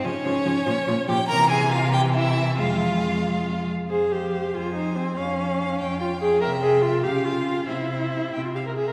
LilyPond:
<<
  \new Staff \with { instrumentName = "Violin" } { \time 6/8 \key f \minor \tempo 4. = 95 des''2~ des''8 g''8 | bes''8 aes''8 f''8 g''8 e''4 | f''2~ f''8 r8 | f''4. aes''4. |
f''2. | g''4. f''4. | e''2~ e''16 r8. | }
  \new Staff \with { instrumentName = "Violin" } { \time 6/8 \key f \minor des'2~ des'8 g'8 | bes'8 aes'8 f'8 g'8 e'4 | f'2~ f'8 r8 | c''8 c''8 c''8 c''8 c''8 c''8 |
f''8 f''8 f''8 g''8 g''8 g''8 | e''8 e''8 e''8 f''8 f''8 f''8 | c''8 c''8 c''8 g''8 f''8 e''8 | }
  \new Staff \with { instrumentName = "Viola" } { \time 6/8 \key f \minor f8 f8 f8 f8 f8 f8 | e4. e4. | aes2~ aes8 r8 | aes'8 g'4 f'8 ees'8 c'8 |
des'2 f'8 aes'8 | bes'8 aes'8 f'8 g'8 f'4 | e'4.~ e'16 f'16 g'16 bes'16 aes'16 bes'16 | }
  \new Staff \with { instrumentName = "Cello" } { \clef bass \time 6/8 \key f \minor des8 des8 des8 bes,8 bes,8 bes,8 | c2. | f,2~ f,8 r8 | f,4. f,4. |
f,4. f,4. | c4. des4. | c4. c4. | }
>>